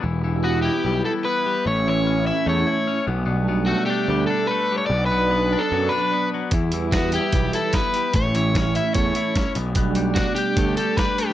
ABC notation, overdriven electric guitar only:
X:1
M:4/4
L:1/16
Q:1/4=148
K:Edor
V:1 name="Overdriven electric guitar"
z4 F2 G4 A2 B4 | c2 c4 e2 c6 z2 | z4 F2 G4 A2 B3 c | d2 B4- B A3 B4 z2 |
z4 F2 G4 A2 B4 | c2 c4 e2 c6 z2 | z4 F2 G4 A2 B2 G2 |]